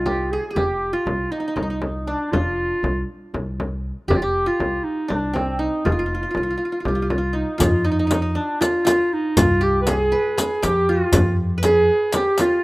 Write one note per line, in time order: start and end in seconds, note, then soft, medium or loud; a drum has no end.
0.00 0.36 C2 medium
0.00 0.91 C4 medium
0.00 1.00 D#4 medium
0.00 0.33 F4 medium
0.00 0.93 F4 medium
0.06 0.39 G4 medium
0.06 frame drum medium
0.31 0.48 G#4 medium
0.31 0.50 G#4 medium
0.48 0.55 G#4 medium
0.48 0.62 G#4 medium
0.53 0.93 F1 medium
0.53 0.95 G4 medium
0.53 1.81 G4 medium
0.53 frame drum medium
0.93 2.28 F4 medium
0.93 1.33 F4 medium
1.06 1.25 C2 medium
1.06 frame drum medium
1.31 1.82 D#4 medium
1.31 1.40 D#4 medium
1.40 1.47 D#4 soft
1.48 1.55 D#4 medium
1.56 2.13 C2 medium
1.56 1.62 D#4 soft
1.56 frame drum medium
1.63 1.70 D#4 soft
1.70 2.13 D#4 soft
1.82 frame drum medium
2.06 2.33 D4 medium
2.06 3.56 D4 medium
2.31 2.70 F1 medium
2.31 3.07 F4 medium
2.31 3.68 F4 medium
2.31 frame drum medium
2.83 3.02 C2 medium
2.83 frame drum medium
3.34 3.90 C2 medium
3.34 frame drum medium
3.60 frame drum medium
4.08 4.46 F1 medium
4.08 4.22 G4 medium
4.08 4.18 G4 medium
4.08 frame drum medium
4.16 4.25 F4 medium
4.22 5.47 G4 medium
4.22 4.49 G4 loud
4.46 5.81 F4 medium
4.46 4.85 F4 medium
4.60 4.78 C2 medium
4.60 frame drum medium
4.84 5.11 D#4 medium
5.08 5.67 C2 medium
5.08 5.65 D4 medium
5.08 5.39 D4 medium
5.08 frame drum medium
5.33 6.93 C4 medium
5.33 5.61 C4 medium
5.33 frame drum medium
5.59 7.03 D#4 medium
5.59 5.87 D#4 medium
5.85 6.23 F1 medium
5.85 5.92 F4 medium
5.85 6.83 F4 medium
5.85 frame drum medium
5.92 5.99 F4 soft
5.99 6.06 F4 soft
6.06 6.14 F4 soft
6.15 6.22 F4 soft
6.23 6.30 F4 soft
6.31 6.37 F4 soft
6.35 6.54 C2 medium
6.35 6.43 F4 soft
6.35 frame drum medium
6.43 6.50 F4 soft
6.50 6.57 F4 soft
6.58 6.65 F4 soft
6.65 6.72 F4 soft
6.72 6.80 F4 soft
6.80 6.88 F4 soft
6.80 7.12 G4 medium
6.85 7.42 C2 medium
6.85 6.95 F4 soft
6.85 frame drum medium
6.95 7.02 F4 soft
7.02 7.10 F4 soft
7.10 7.18 F4 soft
7.10 7.37 F4 medium
7.10 frame drum medium
7.18 7.58 F4 medium
7.33 7.84 D#4 medium
7.33 7.65 D#4 medium
7.58 8.36 F2 medium
7.58 8.60 F4 medium
7.58 riq medium
7.58 darbuka dum medium
7.58 frame drum medium
7.63 7.88 F4 medium
7.85 7.91 D#4 medium
7.85 8.38 D#4 medium
7.85 darbuka ka soft
7.92 7.99 D#4 soft
7.99 8.07 D#4 medium
8.07 8.14 D#4 medium
8.07 riq soft
8.07 darbuka tek medium
8.11 8.22 D#4 medium
8.11 frame drum medium
8.22 8.41 D#4 medium
8.35 9.84 D4 medium
8.35 8.62 D4 medium
8.35 darbuka ka soft
8.61 8.86 F4 medium
8.61 8.84 F4 medium
8.61 riq soft
8.61 darbuka tek medium
8.61 frame drum medium
8.85 9.37 F4 medium
8.85 9.15 F4 medium
8.85 riq soft
8.85 darbuka tek medium
8.85 frame drum medium
9.13 9.39 D#4 medium
9.13 darbuka ka soft
9.37 10.12 C2 medium
9.37 10.72 F4 medium
9.37 9.64 F4 medium
9.37 riq medium
9.37 frame drum medium
9.37 darbuka dum medium
9.61 9.93 G4 medium
9.61 9.81 G4 medium
9.61 darbuka ka soft
9.82 9.90 B4 medium
9.87 10.37 G#4 medium
9.87 10.38 G#4 loud
9.87 riq soft
9.87 darbuka tek medium
9.87 frame drum medium
10.12 11.21 B4 medium
10.12 darbuka ka soft
10.38 10.69 G#4 medium
10.38 10.65 G#4 medium
10.38 riq medium
10.38 darbuka tek medium
10.38 frame drum medium
10.63 11.01 F2 medium
10.63 11.71 G4 medium
10.63 10.92 G4 loud
10.63 riq soft
10.63 darbuka tek medium
10.63 frame drum medium
10.89 12.23 F4 medium
10.89 11.37 F4 medium
11.12 11.89 F2 loud
11.12 riq medium
11.12 darbuka dum loud
11.12 frame drum medium
11.39 darbuka ka soft
11.58 12.64 B4 medium
11.63 12.16 G#4 loud
11.63 12.22 G#4 medium
11.63 riq soft
11.63 darbuka tek medium
11.63 frame drum medium
11.89 darbuka ka soft
12.12 12.43 G4 medium
12.12 12.64 G4 medium
12.12 riq soft
12.12 darbuka tek medium
12.12 frame drum medium
12.38 12.64 F4 medium
12.38 riq soft
12.38 darbuka tek medium
12.38 frame drum medium
12.52 darbuka ka soft